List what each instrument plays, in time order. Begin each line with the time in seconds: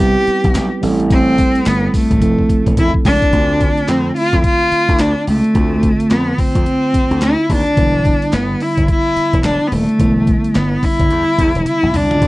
Already playing: slap bass C2, tine electric piano G3 B3 C4 E4 B4, cello G4
0.27 muted slap bass stroke, closed hi-hat
0.44 slap bass B1, kick, closed hi-hat
0.55 slap bass B1, snare, clap, closed hi-hat, tambourine
0.81 slap bass A1, tine electric piano G3 A3 C4 E4 A4, open hi-hat, tambourine
1.00 closed hi-hat
1.10 cello C4, kick, closed hi-hat, tambourine
1.38 kick, closed hi-hat, tambourine
1.55 closed hi-hat
1.66 slap bass G1, cello B3, snare, clap, closed hi-hat, tambourine
1.94 cello A3, kick, open hi-hat, tambourine
2.11 slap bass A1, kick, closed hi-hat
2.20 slap bass F1, tine electric piano F3 A3 C4 E4 A4, kick, closed hi-hat
2.39 kick
2.49 muted slap bass stroke, kick, closed hi-hat
2.66 slap bass E1, kick, closed hi-hat
2.77 slap bass E1, cello E4, kick, closed hi-hat
2.94 kick
3.05 slap bass C#2, cello D4, kick, open hi-hat
3.22 kick, closed hi-hat
3.32 slap bass D2, tine electric piano D3 A3 C4 F4, kick, closed hi-hat
3.61 kick, closed hi-hat
3.77 closed hi-hat
3.88 slap bass F2, cello C4, snare, clap, closed hi-hat
4.16 cello F4, open hi-hat
4.33 slap bass F2, kick, closed hi-hat
4.44 cello F4, kick, closed hi-hat
4.72 muted slap bass stroke, closed hi-hat
4.89 slap bass D2, kick, closed hi-hat
4.99 slap bass D2, cello D4, snare, clap, closed hi-hat
5.27 slap bass C#2, cello A3, open hi-hat
5.44 closed hi-hat
5.54 slap bass D2, tine electric piano D3 A3 C4 F4, kick, closed hi-hat
5.83 kick, closed hi-hat
6.00 closed hi-hat
6.10 slap bass F2, cello B3, snare, clap, closed hi-hat
6.38 cello C4, kick, open hi-hat
6.55 slap bass F2, kick, closed hi-hat
6.66 closed hi-hat
6.94 muted slap bass stroke, kick, closed hi-hat
7.11 slap bass D2, closed hi-hat
7.22 slap bass D2, cello E4, snare, clap, closed hi-hat
7.50 slap bass D#2, cello D4, kick, open hi-hat
7.67 closed hi-hat
7.76 slap bass E1, tine electric piano D3 G3 B3 E4, kick, closed hi-hat
8.05 kick, closed hi-hat
8.22 closed hi-hat
8.33 slap bass G1, cello B3, snare, clap, closed hi-hat
8.60 cello E4, open hi-hat
8.77 slap bass G1, kick, closed hi-hat
8.88 cello E4, kick, closed hi-hat
9.16 muted slap bass stroke, closed hi-hat
9.33 slap bass E1, kick, closed hi-hat
9.44 slap bass E1, cello D4, snare, clap, closed hi-hat
9.68 slap bass D#1, cello B3
9.72 cello A3, open hi-hat
9.89 closed hi-hat
9.98 slap bass E1, tine electric piano D3 G3 B3 E4, kick, closed hi-hat
10.27 kick, closed hi-hat
10.44 closed hi-hat
10.55 slap bass G1, cello B3, snare, clap, closed hi-hat
10.83 cello E4, kick, open hi-hat
11.00 slap bass G1, kick, closed hi-hat
11.11 slap bass E2, closed hi-hat
11.38 slap bass E2, kick, closed hi-hat
11.55 slap bass E1, closed hi-hat
11.66 cello E4, closed hi-hat, high tom
11.83 slap bass B1, mid tom
11.94 slap bass C2, cello D4, mid tom, open hi-hat
12.11 slap bass C#2, closed hi-hat, floor tom
12.20 slap bass D2, tine electric piano D3 A3 C4 E4, kick, closed hi-hat